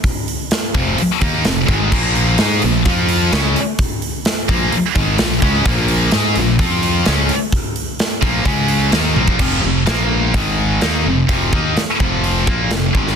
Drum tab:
CC |----------------|x---------------|----------------|----------------|
HH |o-o-o-o-o-o-o-o-|--o-o-o-o-o-o-o-|o-o-o-o-o-o-o-o-|o-o-o-o-o-o-o-o-|
SD |----o-------o---|----o-------o---|----o-------o---|----o-------o---|
T1 |----------------|----------------|----------------|----------------|
BD |o-----o---o---o-|o-------o-------|o-----o---o---o-|o-------o-------|

CC |----------------|x---------------|----------------|
HH |o-o-o-o-o-o-o---|----o---o---o---|o---o---o---o---|
SD |----o-------o---|----o-------o---|----o-------o--o|
T1 |--------------o-|----------------|----------------|
BD |o-----o-o------o|o-------o-------|o-o---o---o---o-|